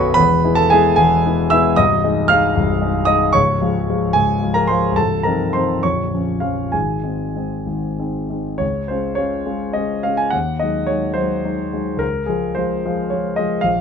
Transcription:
0.00 0.20 B0 medium
0.00 0.20 B1 medium
0.00 0.19 A3 medium
0.00 0.20 B3 soft
0.00 0.20 F#4 medium
0.00 0.15 B4 medium
0.00 0.14 C#5 medium
0.00 0.20 D#5 medium
0.00 0.14 B5 loud
0.00 0.15 C#6 loud
0.00 0.19 D#6 loud
0.14 0.43 E1 medium
0.14 0.43 E2 medium
0.14 0.54 B4 medium
0.14 0.56 B5 loud
0.44 0.69 G#3 medium
0.44 0.69 B3 medium
0.44 0.69 E4 medium
0.55 0.70 A4 medium
0.55 0.70 A5 loud
0.70 0.96 G#3 medium
0.70 0.96 B3 medium
0.70 0.96 E4 medium
0.70 0.96 G#4 medium
0.70 0.95 G#5 loud
0.96 1.24 E1 medium
0.96 1.24 E2 medium
0.96 1.48 G#4 medium
0.96 1.51 G#5 loud
1.25 1.49 G#3 soft
1.25 1.50 B3 soft
1.25 1.50 E4 medium
1.50 1.76 G#3 medium
1.50 1.76 B3 medium
1.50 1.76 E4 medium
1.50 1.76 E5 medium
1.50 1.78 E6 loud
1.76 2.04 C1 medium
1.76 2.02 C2 medium
1.76 2.26 D#5 medium
1.76 2.29 D#6 loud
2.04 2.27 G#3 medium
2.04 2.28 D#4 medium
2.28 2.54 G#3 medium
2.28 2.54 D#4 medium
2.28 3.03 F5 medium
2.28 3.07 F6 loud
2.55 2.81 C1 medium
2.55 2.81 C2 medium
2.81 3.05 G#3 soft
2.81 3.05 D#4 medium
3.05 3.32 G#3 soft
3.05 3.32 D#4 medium
3.05 3.32 D#5 medium
3.05 3.33 D#6 loud
3.33 3.60 C#1 medium
3.33 3.60 C#2 medium
3.33 4.11 C#5 medium
3.33 4.14 C#6 loud
3.60 3.85 F3 soft
3.60 3.86 G#3 soft
3.60 3.86 F4 soft
3.89 4.13 F3 soft
3.89 4.13 G#3 soft
3.89 4.13 F4 medium
4.13 4.41 C#1 medium
4.13 4.41 C#2 medium
4.13 4.53 G#4 medium
4.13 4.54 G#5 medium
4.42 4.66 F3 soft
4.42 4.67 G#3 soft
4.42 4.67 F4 soft
4.54 4.68 A#4 medium
4.54 4.68 A#5 medium
4.67 4.94 F3 soft
4.67 4.94 G#3 soft
4.67 4.95 F4 soft
4.67 4.94 C5 medium
4.67 4.96 C6 medium
4.92 5.21 C2 medium
4.96 5.24 C1 medium
4.96 5.23 A4 medium
4.96 5.24 A5 medium
5.23 5.51 F3 soft
5.23 5.51 C4 soft
5.23 5.51 D#4 soft
5.23 5.51 A#4 medium
5.23 5.53 A#5 medium
5.53 5.81 F3 soft
5.53 5.81 C4 soft
5.53 5.81 D#4 soft
5.53 5.81 C5 medium
5.53 5.82 C6 medium
5.83 6.12 A#0 soft
5.83 6.12 A#1 soft
5.83 6.39 C#5 medium
5.83 6.42 C#6 medium
6.14 6.40 F3 soft
6.14 6.40 C#4 soft
6.40 6.70 F3 soft
6.40 6.70 C#4 soft
6.40 6.71 F4 soft
6.40 6.72 F5 medium
6.72 7.04 G#1 soft
6.72 7.04 G#2 soft
6.72 7.63 G#4 soft
6.72 7.67 G#5 medium
7.03 7.32 G#3 soft
7.03 7.33 C4 soft
7.03 7.33 D#4 soft
7.36 7.64 G#3 soft
7.36 7.64 C4 soft
7.36 7.65 D#4 soft
7.66 7.98 G#1 soft
7.66 7.98 G#2 soft
7.99 8.28 G#3 soft
7.99 8.28 C4 soft
7.99 8.28 D#4 soft
8.30 8.58 G#3 soft
8.30 8.59 C4 soft
8.30 8.59 D#4 soft
8.58 8.89 C#2 soft
8.58 8.89 C#5 medium
8.88 9.16 G#3 soft
8.88 9.17 C#4 soft
8.88 9.17 F4 soft
8.88 9.19 C5 medium
9.15 9.44 G#3 soft
9.15 9.45 C#4 soft
9.15 9.45 F4 soft
9.15 9.75 C#5 medium
9.46 9.73 G#3 soft
9.46 9.73 C#4 soft
9.46 9.73 F4 soft
9.73 10.02 G#3 soft
9.73 10.02 C#4 soft
9.73 10.02 F4 soft
9.73 10.04 D#5 medium
10.03 10.31 G#3 soft
10.03 10.31 C#4 soft
10.03 10.31 F4 soft
10.03 10.19 F5 medium
10.17 10.33 G#5 medium
10.30 10.60 D#2 soft
10.30 10.60 F#5 medium
10.59 10.86 F#3 soft
10.59 10.86 G#3 soft
10.59 10.86 D#4 soft
10.59 10.88 D#5 medium
10.87 11.14 F#3 soft
10.87 11.14 G#3 soft
10.87 11.14 D#4 soft
10.87 11.15 C#5 medium
11.14 11.41 F#3 soft
11.14 11.42 G#3 soft
11.14 11.42 D#4 soft
11.14 11.99 C5 medium
11.44 11.70 F#3 soft
11.44 11.70 G#3 soft
11.44 11.70 D#4 soft
11.73 11.98 F#3 soft
11.73 11.98 G#3 soft
11.73 11.99 D#4 soft
11.97 12.25 C#2 soft
11.97 12.27 A#4 medium
12.26 12.53 F3 soft
12.26 12.54 G#3 soft
12.26 12.54 F4 soft
12.26 12.55 G#4 medium
12.55 12.81 F3 soft
12.55 12.82 G#3 soft
12.55 12.82 F4 soft
12.55 13.11 C5 medium
12.85 13.10 F3 soft
12.85 13.10 G#3 soft
12.85 13.10 F4 soft
13.10 13.36 F3 soft
13.10 13.36 G#3 soft
13.10 13.36 F4 soft
13.10 13.37 C#5 medium
13.36 13.61 F3 soft
13.36 13.62 G#3 soft
13.36 13.62 F4 soft
13.36 13.63 D#5 medium
13.61 13.81 A#1 medium
13.61 13.81 F5 medium

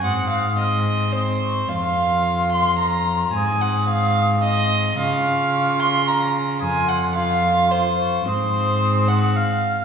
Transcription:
0.03 1.69 G#2 medium
0.03 0.57 C4 medium
0.03 0.29 F#5 medium
0.03 0.57 D#6 medium
0.29 0.57 F5 medium
0.58 1.12 C4 medium
0.58 1.13 D#5 medium
0.58 0.65 F6 medium
0.64 1.13 D#6 medium
1.12 1.71 C4 medium
1.12 1.70 C5 medium
1.12 1.21 D#6 medium
1.43 1.70 C#6 medium
1.68 3.31 F2 medium
1.68 3.33 F4 medium
1.68 2.51 F5 medium
1.68 3.32 C6 medium
2.52 2.78 C6 medium
2.79 3.33 A#5 medium
3.34 4.95 G#2 medium
3.34 4.41 C4 medium
3.34 3.63 G#5 medium
3.34 4.42 D#6 medium
3.61 3.89 F#5 medium
3.90 4.43 F5 loud
4.43 4.99 C4 medium
4.43 4.97 D#5 medium
4.43 4.79 D#6 medium
4.97 6.63 C#3 medium
4.97 6.61 F4 medium
4.97 5.82 F5 loud
4.97 5.03 D#6 medium
5.02 6.34 C#6 medium
5.80 6.09 C6 loud
6.07 6.62 A#5 medium
6.59 8.26 F2 medium
6.59 7.15 F4 medium
6.59 6.90 G#5 loud
6.59 6.65 D#6 medium
6.64 7.14 C6 medium
6.89 7.15 F#5 medium
7.15 7.69 F4 medium
7.15 7.73 F5 medium
7.15 7.69 C6 medium
7.70 8.27 F4 medium
7.70 8.26 C5 medium
7.70 7.97 C6 medium
7.99 8.25 C#6 medium
8.25 9.85 G#2 medium
8.25 9.85 C4 medium
8.25 9.10 C5 medium
8.25 9.37 D#6 medium
9.08 9.37 F#5 medium
9.35 9.85 F5 medium
9.35 9.85 F6 medium

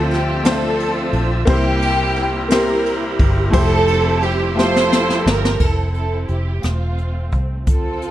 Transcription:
0.00 1.10 D2 loud
0.00 0.41 D3 medium
0.00 1.44 F3 medium
0.00 0.24 A3 medium
0.00 0.42 C4 medium
0.00 1.44 C4 medium
0.00 0.24 D4 medium
0.00 1.44 D4 medium
0.00 0.26 F4 medium
0.00 0.42 F4 medium
0.00 1.47 A4 medium
0.00 0.26 C5 loud
0.00 0.25 E5 medium
0.00 1.44 E5 medium
0.11 0.47 G4 medium
0.11 snare soft
0.11 ride soft
0.43 1.27 A3 medium
0.43 1.45 C4 medium
0.43 1.28 D4 medium
0.43 1.28 F4 medium
0.43 1.29 C5 medium
0.43 1.28 E5 medium
0.43 snare loud
0.43 ride medium
0.47 1.45 F4 medium
0.47 1.23 A4 medium
0.80 ride soft
1.13 1.45 A#1 medium
1.13 ride soft
1.45 3.16 C2 medium
1.45 2.47 C3 medium
1.45 3.50 G3 medium
1.45 2.30 A#3 medium
1.45 3.50 A#3 medium
1.45 3.49 C4 medium
1.45 2.30 C4 medium
1.45 2.31 E4 medium
1.45 3.50 E4 medium
1.45 2.31 G4 medium
1.45 3.50 A#4 medium
1.45 kick loud
1.45 ride medium
1.49 2.48 A#3 medium
1.49 2.48 E4 medium
1.49 2.49 G4 loud
1.49 2.32 C5 loud
1.82 ride medium
2.16 ride soft
2.48 3.33 A#3 medium
2.48 3.33 C4 medium
2.48 3.34 E4 medium
2.48 3.34 G4 medium
2.48 3.51 G4 medium
2.48 3.35 C5 medium
2.48 snare loud
2.48 ride medium
2.53 3.51 E4 medium
2.53 3.21 A#4 medium
2.86 ride soft
3.19 3.51 G1 medium
3.19 kick medium
3.19 ride soft
3.50 5.22 F1 loud
3.50 4.36 F3 medium
3.50 4.35 A3 medium
3.50 5.57 C4 medium
3.50 4.36 E4 medium
3.50 4.37 G4 medium
3.50 4.37 C5 loud
3.50 5.57 E5 medium
3.50 kick loud
3.50 ride medium
3.54 5.57 F3 medium
3.54 3.61 G#3 soft
3.54 4.54 C4 medium
3.54 4.54 E4 medium
3.54 5.57 G4 medium
3.54 4.20 A4 loud
3.61 5.60 G3 medium
3.88 ride medium
4.22 4.57 G4 loud
4.22 ride soft
4.55 5.40 F3 medium
4.55 5.39 A3 medium
4.55 5.57 C4 medium
4.55 5.40 G4 medium
4.55 5.41 C5 medium
4.55 5.40 E5 medium
4.59 5.58 E4 medium
4.59 5.36 F4 medium
4.59 5.57 A4 medium
4.59 5.23 C5 loud
4.59 snare medium
4.76 snare medium
4.93 snare medium
5.10 snare medium
5.26 5.58 G1 medium
5.26 5.61 A#4 medium
5.26 snare loud
5.45 snare medium
5.60 6.25 F1 medium
5.60 6.61 C4 medium
5.60 6.61 E4 medium
5.60 5.94 A4 medium
5.60 kick medium
5.60 crash medium
5.94 6.27 A4 medium
5.94 closed hi-hat soft
6.28 6.61 F1 medium
6.28 6.62 G4 medium
6.28 closed hi-hat soft
6.63 7.32 E1 medium
6.63 7.63 A3 soft
6.63 7.64 C4 soft
6.63 7.33 F4 medium
6.63 cross-stick medium
6.63 closed hi-hat medium
6.98 closed hi-hat soft
7.32 7.67 C2 medium
7.32 kick medium
7.32 closed hi-hat soft
7.67 8.11 D2 medium
7.67 8.11 C4 medium
7.67 8.11 F4 medium
7.67 8.11 A4 medium
7.67 kick medium
7.67 closed hi-hat medium
8.02 closed hi-hat soft

